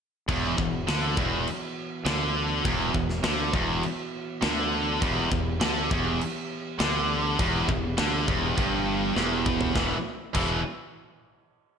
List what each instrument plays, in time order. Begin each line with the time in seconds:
0.28 fingered electric bass E1, distorted electric guitar E2, tonewheel organ E3 B3 F#4, kick, crash
0.58 fingered electric bass E1, distorted electric guitar E2, kick
0.88 fingered electric bass D2, distorted electric guitar D3, snare, crash
1.17 fingered electric bass E1, distorted electric guitar E2, kick
1.47 crash
2.05 fingered electric bass D2, distorted electric guitar D3, snare, crash
2.65 fingered electric bass E1, distorted electric guitar E2, kick, crash
2.94 fingered electric bass E1, distorted electric guitar E2, kick
3.10 snare
3.24 fingered electric bass D2, distorted electric guitar D3, snare, crash
3.53 fingered electric bass E1, distorted electric guitar E2, kick
3.83 crash
4.42 fingered electric bass D2, distorted electric guitar D3, snare, crash
5.01 fingered electric bass E1, distorted electric guitar E2, tonewheel organ G4, kick, crash
5.31 fingered electric bass E1, distorted electric guitar E2, kick
5.61 fingered electric bass D2, distorted electric guitar D3, snare, crash
5.91 fingered electric bass E1, distorted electric guitar E2, kick
6.21 crash
6.80 fingered electric bass D2, distorted electric guitar D3, snare, crash
7.39 fingered electric bass E1, distorted electric guitar E2, kick, crash
7.68 fingered electric bass E1, distorted electric guitar E2, kick
7.98 fingered electric bass D2, distorted electric guitar D3, snare, crash
8.27 fingered electric bass E1, distorted electric guitar E2, kick
8.57 fingered electric bass G1, distorted electric guitar G2, kick, crash
9.16 fingered electric bass E1, distorted electric guitar E2, snare
9.46 kick
9.61 floor tom
9.74 fingered electric bass E1, distorted electric guitar E2 B2 E3, tonewheel organ E3 B3 F#4, kick, snare
10.35 fingered electric bass E1, distorted electric guitar E2 B2 E3, kick, crash